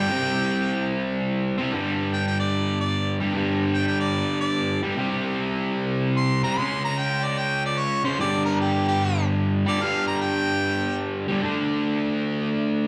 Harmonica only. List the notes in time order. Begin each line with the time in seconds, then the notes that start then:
Already playing: G5
2.14 G5
2.27 G5
2.39 D5
2.80 D5
3.74 G5
3.88 G5
4.00 D5
4.40 D5
6.17 C6
6.43 A#5
6.57 C6
6.85 A#5
6.98 G5
7.24 D5
7.38 G5
7.65 D5
7.78 C#5
8.05 C5
8.20 D5
8.45 A#4
8.61 G4
8.88 G4
9.68 D5
9.83 F5
10.07 A#5
10.21 G5